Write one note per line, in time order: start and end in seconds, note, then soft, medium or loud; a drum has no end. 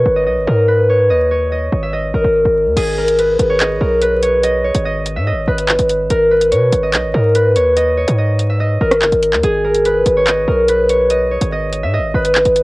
0.00 0.54 B4 medium
0.00 0.89 C#5 medium
0.00 0.16 D#5 medium
0.06 0.28 G#1 loud
0.16 0.26 D#5 medium
0.27 0.39 B1 medium
0.27 1.10 D#5 medium
0.37 0.47 G#1 loud
0.48 1.12 G#2 loud
0.48 0.74 A#4 medium
0.68 2.20 B4 medium
0.90 1.31 C#5 medium
1.10 1.69 D#2 loud
1.10 1.52 D#5 loud
1.31 3.22 C#5 medium
1.52 1.89 D#5 medium
1.72 2.12 G#1 loud
1.83 1.99 E5 medium
1.93 3.60 D#5 medium
2.14 2.24 G#1 loud
2.14 2.97 A#4 medium
2.25 2.45 G#1 loud
2.45 2.68 G#1 loud
2.66 2.76 D#2 loud
2.76 3.37 G#1 loud
2.76 5.04 G#4 loud
2.76 closed hi-hat medium
2.76 crash loud
2.98 3.25 A#4 medium
3.08 closed hi-hat medium
3.19 3.87 B4 medium
3.19 closed hi-hat medium
3.39 3.79 G#1 loud
3.39 closed hi-hat medium
3.50 4.22 C#5 medium
3.60 4.43 D#5 medium
3.60 clap loud
3.60 closed hi-hat medium
3.81 4.71 B1 loud
3.81 4.08 A#4 medium
4.02 5.47 B4 medium
4.02 closed hi-hat medium
4.22 4.64 C#5 medium
4.22 closed hi-hat medium
4.43 4.85 D#5 loud
4.43 closed hi-hat medium
4.64 6.51 C#5 medium
4.75 5.18 G#1 loud
4.75 closed hi-hat medium
4.85 5.22 D#5 medium
5.06 closed hi-hat medium
5.16 5.34 G#2 loud
5.16 5.33 E5 medium
5.27 6.83 D#5 medium
5.32 5.47 G#1 loud
5.48 5.78 G#1 loud
5.48 6.16 B4 medium
5.58 closed hi-hat medium
5.68 clap loud
5.79 6.09 G#1 loud
5.79 closed hi-hat medium
5.89 closed hi-hat medium
6.10 6.53 G#1 loud
6.10 6.37 A#4 loud
6.10 closed hi-hat medium
6.31 7.20 B4 medium
6.41 closed hi-hat medium
6.51 6.72 B2 loud
6.51 7.56 C#5 medium
6.51 closed hi-hat medium
6.73 6.95 G#1 loud
6.73 closed hi-hat medium
6.83 6.93 D#5 medium
6.93 7.05 B1 loud
6.93 7.76 D#5 medium
6.93 clap loud
6.93 closed hi-hat medium
7.04 7.14 G#1 loud
7.14 7.57 G#2 loud
7.14 7.41 A#4 medium
7.35 8.87 B4 medium
7.35 closed hi-hat medium
7.56 8.05 D#2 loud
7.56 7.97 C#5 medium
7.56 closed hi-hat medium
7.77 8.18 D#5 loud
7.77 closed hi-hat medium
7.97 9.88 C#5 medium
8.08 8.78 G#2 loud
8.08 closed hi-hat medium
8.18 8.56 D#5 medium
8.39 closed hi-hat medium
8.50 8.66 E5 medium
8.60 10.27 D#5 medium
8.81 9.03 G#1 loud
8.81 9.64 A#4 medium
8.91 cross-stick loud
8.91 closed hi-hat medium
9.02 9.12 G1 loud
9.02 clap loud
9.12 9.34 G#1 loud
9.12 closed hi-hat soft
9.23 closed hi-hat medium
9.33 9.43 D#2 loud
9.33 clap medium
9.43 10.03 G#1 loud
9.43 11.71 G#4 loud
9.43 closed hi-hat medium
9.64 9.91 A#4 medium
9.74 closed hi-hat medium
9.85 10.54 B4 medium
9.85 closed hi-hat medium
10.06 10.46 G#1 loud
10.06 closed hi-hat medium
10.17 10.89 C#5 medium
10.27 11.10 D#5 medium
10.27 clap loud
10.27 closed hi-hat medium
10.48 11.38 B1 loud
10.48 10.75 A#4 medium
10.68 12.14 B4 medium
10.68 closed hi-hat medium
10.89 11.31 C#5 medium
10.89 closed hi-hat medium
11.10 11.52 D#5 loud
11.10 closed hi-hat medium
11.31 12.63 C#5 medium
11.41 11.84 G#1 loud
11.41 closed hi-hat medium
11.52 11.89 D#5 medium
11.73 closed hi-hat medium
11.83 12.00 G#2 loud
11.83 12.00 E5 medium
11.94 12.63 D#5 loud
11.99 12.13 G#1 loud
12.14 12.44 G#1 loud
12.14 12.63 B4 medium
12.25 closed hi-hat medium
12.35 clap loud
12.45 12.63 G#1 loud
12.45 closed hi-hat medium
12.56 closed hi-hat medium